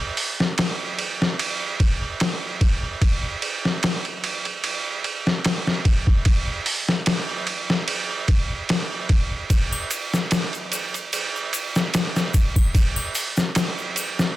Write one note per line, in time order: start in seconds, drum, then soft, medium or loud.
0.17 open hi-hat medium
0.40 snare medium
0.58 snare loud
0.58 ride medium
0.99 ride medium
1.22 snare medium
1.39 ride medium
1.80 kick medium
1.80 ride medium
2.20 snare loud
2.20 ride medium
2.61 kick medium
2.61 ride medium
3.02 kick loud
3.02 ride medium
3.42 ride medium
3.65 snare soft
3.83 snare loud
3.83 ride medium
4.05 ride soft
4.24 ride medium
4.45 ride soft
4.64 ride medium
5.04 ride medium
5.27 snare soft
5.45 snare loud
5.45 ride medium
5.67 snare soft
5.85 kick medium
5.85 ride medium
6.07 kick medium
6.25 kick loud
6.25 ride medium
6.66 open hi-hat medium
6.89 snare medium
7.06 snare loud
7.06 ride loud
7.47 ride medium
7.70 snare medium
7.88 ride medium
8.28 kick medium
8.28 ride medium
8.69 snare loud
8.69 ride medium
9.09 kick medium
9.09 ride medium
9.50 kick loud
9.50 ride medium
9.50 shaker soft
9.72 triangle medium
9.72 shaker soft
9.91 ride medium
9.91 shaker medium
10.14 snare soft
10.14 shaker soft
10.31 snare loud
10.31 ride medium
10.31 shaker medium
10.53 ride soft
10.53 shaker soft
10.72 ride medium
10.72 shaker medium
10.94 ride soft
10.94 shaker soft
11.13 ride medium
11.13 shaker soft
11.36 shaker soft
11.53 ride medium
11.53 shaker medium
11.75 snare soft
11.75 shaker soft
11.94 snare loud
11.94 ride medium
11.94 shaker medium
12.16 snare soft
12.16 shaker soft
12.34 kick medium
12.34 ride medium
12.34 shaker medium
12.56 kick loud
12.56 triangle medium
12.56 shaker soft
12.74 kick loud
12.74 ride medium
12.74 shaker soft
12.96 triangle medium
12.96 shaker soft
13.15 open hi-hat medium
13.15 shaker medium
13.36 snare medium
13.36 shaker soft
13.55 snare loud
13.55 ride medium
13.55 shaker medium
13.78 shaker soft
13.96 ride medium
13.96 triangle medium
13.96 shaker medium
14.19 snare medium
14.19 shaker soft